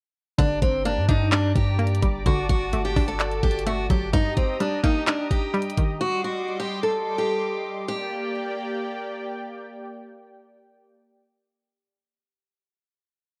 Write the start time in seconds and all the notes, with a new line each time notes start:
0.38 G1 D3 D4 G4 D5 A#5 D6, kick, closed hi-hat
0.62 G1 C4, kick, closed hi-hat
0.85 A#3 D4, closed hi-hat
0.97 G2
1.09 G2 D4 D#4, kick, closed hi-hat
1.32 D4 D5, clap, closed hi-hat
1.56 G2 G4, kick, closed hi-hat
1.79 A#3, closed hi-hat
1.87 closed hi-hat
1.95 closed hi-hat
2.02 G1 G3, kick, closed hi-hat
2.26 G1 D3 F#4 A5, kick, closed hi-hat
2.49 G1 F#4, kick, closed hi-hat
2.73 G1 A3, closed hi-hat
2.85 G4
2.96 G1 D4, kick, open hi-hat
3.08 A4
3.20 D5, clap, closed hi-hat
3.31 closed hi-hat
3.43 G1 G4, kick, closed hi-hat
3.51 closed hi-hat
3.59 closed hi-hat
3.66 A3 F#4, closed hi-hat
3.90 G1 F#3 G4, kick, closed hi-hat
4.13 G2 D#4 G4 D#5 A#5 D#6, kick, closed hi-hat
4.37 C4, kick, closed hi-hat
4.60 G3 D4, closed hi-hat
4.83 A#3 D#4, kick, closed hi-hat
5.07 D4 D#4, clap, closed hi-hat
5.31 G4, kick, closed hi-hat
5.54 G3, closed hi-hat
5.62 closed hi-hat
5.70 closed hi-hat
5.78 D#3, kick, closed hi-hat
6.01 G3 F#4 C6 D6
6.24 F#4
6.60 G4
6.83 A4
7.18 G4
7.88 A#3 G4 D5 G5